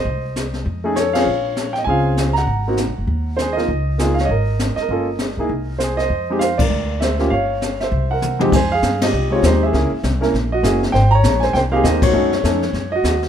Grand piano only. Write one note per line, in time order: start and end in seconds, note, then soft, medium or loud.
0.00 0.63 C5 medium
0.00 0.92 D#5 medium
0.84 0.95 A3 medium
0.84 0.95 C#4 medium
0.84 0.95 D#4 medium
0.84 0.96 G#4 medium
0.96 1.15 A4 medium
0.96 1.15 C#5 medium
1.13 1.25 C4 medium
1.13 1.26 C#4 medium
1.13 1.26 F4 soft
1.13 1.26 G#4 medium
1.13 1.76 F5 medium
1.18 1.73 C#5 medium
1.73 1.78 G5 medium
1.78 1.83 D#5 medium
1.84 2.32 C4 medium
1.84 2.32 C#4 soft
1.84 2.33 F4 medium
1.84 2.36 G#5 medium
1.88 2.33 G#4 medium
1.88 2.34 F5 medium
2.33 3.33 A#5 medium
2.38 3.35 F#5 medium
2.68 2.77 A#3 medium
2.68 2.77 C4 soft
2.68 2.78 D#4 medium
2.68 2.78 F#4 medium
3.37 3.56 C5 medium
3.42 3.57 G#4 medium
3.53 3.67 A#3 medium
3.53 3.67 D#4 soft
3.53 3.67 F4 medium
3.53 4.11 D#5 medium
3.57 3.67 A#4 medium
3.98 4.15 A#3 medium
3.98 4.15 D#4 soft
3.98 4.16 F4 medium
3.98 4.16 G#4 medium
4.14 4.26 F5 medium
4.21 4.30 C#5 medium
4.25 4.75 D#5 medium
4.30 4.75 A#4 medium
4.76 5.75 D#5 medium
4.82 5.78 A#4 medium
4.90 5.06 A#3 medium
4.90 5.06 C#4 soft
4.90 5.07 F4 medium
4.90 5.07 A4 medium
5.39 5.49 A#3 medium
5.39 5.49 D#4 medium
5.39 5.49 E4 medium
5.39 5.49 G#4 medium
5.79 5.98 C5 medium
5.84 5.99 G#4 medium
5.97 6.41 D#5 medium
6.01 6.39 C5 medium
6.30 6.40 G#3 medium
6.30 6.40 C4 medium
6.30 6.40 D#4 medium
6.30 6.41 G4 medium
6.39 6.59 F5 medium
6.43 6.59 C5 medium
6.58 6.99 A#4 medium
6.58 7.01 D5 medium
7.00 7.30 C5 medium
7.00 7.32 E5 medium
7.19 7.30 A#3 medium
7.19 7.30 C#4 medium
7.19 7.30 F4 medium
7.19 7.30 G4 medium
7.30 7.78 C#5 medium
7.30 7.81 F5 medium
7.80 8.38 C5 medium
7.80 8.36 E5 medium
8.11 8.39 A#4 medium
8.11 8.38 F#5 medium
8.39 8.50 F2 medium
8.39 8.50 G#3 medium
8.39 8.50 C4 medium
8.39 8.51 D#4 medium
8.39 8.51 G4 medium
8.54 8.71 C5 medium
8.54 8.70 G#5 medium
8.72 9.01 G#4 medium
8.72 9.02 F5 medium
9.03 9.31 G4 medium
9.03 9.30 D#5 medium
9.31 9.70 G#3 medium
9.31 9.71 C4 medium
9.31 9.46 D#4 medium
9.31 9.71 G4 medium
9.31 9.42 C#5 medium
9.35 9.44 F4 medium
9.45 9.62 D#4 medium
9.45 9.63 C5 medium
9.63 9.73 G#4 medium
9.63 10.49 E5 medium
9.73 9.89 A#3 medium
9.73 9.90 C#4 medium
9.73 9.90 E4 medium
9.73 9.90 G#4 medium
10.21 10.32 A#3 medium
10.21 10.32 C#4 medium
10.21 10.32 E4 medium
10.21 10.32 A#4 medium
10.52 10.81 F#4 medium
10.52 10.80 D#5 medium
10.63 10.80 A#3 medium
10.63 10.80 C#4 medium
10.63 10.80 E4 medium
10.63 10.81 G#4 medium
10.92 11.11 C5 medium
10.92 11.10 G5 loud
11.11 11.42 C#5 medium
11.11 11.42 A#5 loud
11.40 11.54 C5 medium
11.40 11.53 G#5 medium
11.53 11.62 C5 medium
11.53 11.58 G5 medium
11.72 12.11 A#3 medium
11.72 12.11 C4 medium
11.72 12.12 D#4 medium
11.72 11.86 G4 medium
11.72 11.84 F5 medium
11.76 11.85 G#4 medium
11.84 12.03 G4 medium
11.84 12.03 D#5 medium
12.03 12.13 F#4 medium
12.03 12.89 C#5 medium
12.13 12.30 A3 medium
12.13 12.31 C#4 medium
12.13 12.30 D#4 medium
12.13 12.31 F#4 medium
12.43 12.61 A3 medium
12.43 12.61 C#4 medium
12.43 12.61 D#4 soft
12.43 12.61 A4 medium
12.92 13.22 F#4 medium
12.92 13.20 D#5 medium